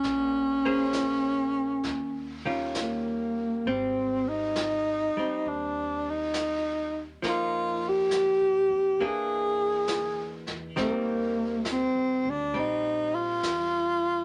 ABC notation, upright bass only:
X:1
M:4/4
L:1/8
Q:"Swing" 1/4=67
K:Eb
V:1 name="Upright bass" clef=bass
B,,,4 E,,4 | A,,,3 z E,,4 | F,,2- (3F,, G,, F,, =E,,3 E,, | E,,2- (3E,, F,, D,, B,,,2 _F,,2 |]